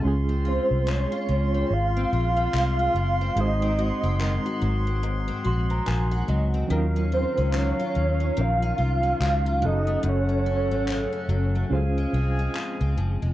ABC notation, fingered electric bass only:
X:1
M:4/4
L:1/16
Q:"Swing 16ths" 1/4=72
K:Db
V:1 name="Fingered electric bass" clef=bass
D,,3 C,,2 z D,,2 A,,,2 B,,,2 C,,2 G,,,2 | A,,,3 G,,,2 z A,,,4 B,,,2 B,,,2 D,,2 | E,,3 D,,2 z E,,2 B,,,2 C,,2 D,,2 G,,,2 | G,,,3 A,,,2 z G,,,2 D,,2 C,,2 z D,, G,,, F,,, |]